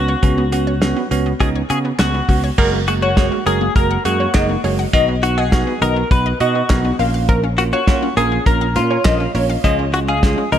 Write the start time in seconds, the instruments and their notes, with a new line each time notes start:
Already playing: fretless electric bass C#2, tine electric piano B3 C#4 F#4, clean electric guitar F#4
0.08 synth arpeggio sound C#5
0.23 fretless electric bass C#2, synth arpeggio sound C#3, tine electric piano B3 C#4 F#4, kick, closed hi-hat
0.38 synth arpeggio sound B3
0.52 tine electric piano B3 C#4 F#4, synth arpeggio sound F#4, closed hi-hat
0.67 synth arpeggio sound C#5
0.82 tine electric piano B3 C#4 F#4, synth arpeggio sound F#4, snare, closed hi-hat
0.96 synth arpeggio sound B3
1.11 fretless electric bass C#2, tine electric piano B3 C#4 F#4, closed hi-hat
1.26 synth arpeggio sound B3
1.40 fretless electric bass C#2, tine electric piano B3 C#4 D#4, synth arpeggio sound F#4, clean electric guitar G#4, kick, closed hi-hat
1.55 synth arpeggio sound C#5
1.70 fretless electric bass C#3, tine electric piano B3 C#4 F#4, synth arpeggio sound F#4, clean electric guitar G#4, closed hi-hat
1.85 synth arpeggio sound B3
1.99 fretless electric bass C#2, synth arpeggio sound C#3, tine electric piano B3 C#4 F#4, clean electric guitar F#4, snare, clap, closed hi-hat
2.14 synth arpeggio sound B3
2.29 fretless electric bass C#2, tine electric piano B3 C#4 F#4, synth arpeggio sound F#4, kick, open hi-hat
2.44 synth arpeggio sound C#5
2.58 fretless electric bass F#1, synth arpeggio sound F#3, tine electric piano G#3 A#3 F#4, analog polysynth A#4, kick, crash
2.73 synth arpeggio sound A#3
2.88 tine electric piano G#3 A#3 F#4, clean electric guitar F#4, synth arpeggio sound G#4, closed hi-hat
3.02 clean electric guitar F#4, analog polysynth C#5, synth arpeggio sound F#5
3.17 tine electric piano G#3 A#3 F#4, synth arpeggio sound G#4, kick, snare, closed hi-hat
3.32 synth arpeggio sound A#3
3.46 fretless electric bass F#1, synth arpeggio sound F#3, tine electric piano G#3 A#3 F#4, clean electric guitar G#4, analog polysynth A#4, closed hi-hat
3.61 synth arpeggio sound A#3
3.76 fretless electric bass F#1, tine electric piano G#3 A#3 F#4, synth arpeggio sound G#4, analog polysynth A#4, clean electric guitar A#4, kick, closed hi-hat
3.91 synth arpeggio sound F#5
4.05 fretless electric bass F#2, tine electric piano G#3 A#3 F#4, clean electric guitar F#4, synth arpeggio sound G#4, closed hi-hat
4.20 synth arpeggio sound A#3, analog polysynth C#5
4.34 fretless electric bass F#1, synth arpeggio sound F#3, tine electric piano G#3 A#3 D#4, analog polysynth D#5, kick, snare, clap, closed hi-hat
4.49 synth arpeggio sound A#3
4.64 fretless electric bass F#1, tine electric piano G#3 A#3 F#4, synth arpeggio sound G#4, analog polysynth C#5, open hi-hat
4.79 synth arpeggio sound F#5
4.93 fretless electric bass B1, synth arpeggio sound D#3, tine electric piano B3 D#4 F#4, analog polysynth D#5, kick, closed hi-hat
5.08 synth arpeggio sound B3
5.23 tine electric piano B3 D#4 F#4, synth arpeggio sound F#4, clean electric guitar F#4, closed hi-hat
5.37 clean electric guitar G#4, synth arpeggio sound D#5, analog polysynth F#5
5.52 tine electric piano B3 D#4 F#4, synth arpeggio sound F#4, kick, snare, closed hi-hat
5.67 synth arpeggio sound B3
5.82 fretless electric bass B1, synth arpeggio sound D#3, tine electric piano B3 D#4 F#4, clean electric guitar A#4, analog polysynth D#5, closed hi-hat
5.96 synth arpeggio sound B3
6.11 fretless electric bass B1, tine electric piano B3 D#4 F#4, synth arpeggio sound F#4, clean electric guitar B4, kick, closed hi-hat
6.26 synth arpeggio sound D#5
6.40 fretless electric bass B2, tine electric piano B3 D#4 F#4, synth arpeggio sound F#4, clean electric guitar F#4, analog polysynth D#5, closed hi-hat
6.55 synth arpeggio sound B3
6.70 fretless electric bass B1, synth arpeggio sound D#3, tine electric piano B3 D#4 F#4, kick, snare, clap, closed hi-hat
6.85 synth arpeggio sound B3
6.99 fretless electric bass A#1, tine electric piano A#3 C#4 F4, synth arpeggio sound A#4, analog polysynth F5, open hi-hat
7.14 synth arpeggio sound F5
7.29 synth arpeggio sound F3, analog polysynth A#4, kick, closed hi-hat
7.43 synth arpeggio sound C#4
7.58 tine electric piano A#3 C#4 F4, clean electric guitar F#4, synth arpeggio sound A#4, closed hi-hat
7.73 clean electric guitar F#4, analog polysynth C#5, synth arpeggio sound F5
7.87 tine electric piano A#3 C#4 F4, synth arpeggio sound A#4, kick, snare, closed hi-hat
8.03 synth arpeggio sound C#4
8.17 fretless electric bass A#1, synth arpeggio sound F3, tine electric piano A#3 C#4 F4, clean electric guitar G#4, analog polysynth A#4, closed hi-hat
8.32 synth arpeggio sound C#4
8.46 fretless electric bass A#1, tine electric piano A#3 C#4 F4, analog polysynth A#4, clean electric guitar A#4, synth arpeggio sound A#4, kick, closed hi-hat
8.61 synth arpeggio sound F5
8.76 fretless electric bass A#2, tine electric piano A#3 C#4 F4, clean electric guitar F4, synth arpeggio sound A#4, closed hi-hat
8.90 synth arpeggio sound C#4, analog polysynth C#5
9.05 fretless electric bass A#1, synth arpeggio sound F3, tine electric piano A#3 C#4 F4, analog polysynth D#5, kick, snare, clap, closed hi-hat
9.20 synth arpeggio sound C#4
9.35 fretless electric bass A#1, tine electric piano A#3 C#4 F4, synth arpeggio sound A#4, analog polysynth C#5, open hi-hat
9.50 synth arpeggio sound F5
9.64 fretless electric bass C#2, synth arpeggio sound F3, tine electric piano G#3 C#4 F4, analog polysynth D#5, kick, closed hi-hat
9.79 synth arpeggio sound C#4
9.94 tine electric piano G#3 C#4 F4, clean electric guitar F#4, synth arpeggio sound G#4, closed hi-hat
10.08 clean electric guitar G#4, synth arpeggio sound F5, analog polysynth F5
10.23 tine electric piano G#3 C#4 F4, synth arpeggio sound G#4, kick, snare, closed hi-hat
10.38 synth arpeggio sound C#4
10.52 fretless electric bass C#2, synth arpeggio sound F3, tine electric piano G#3 C#4 F4, clean electric guitar A#4, analog polysynth D#5, closed hi-hat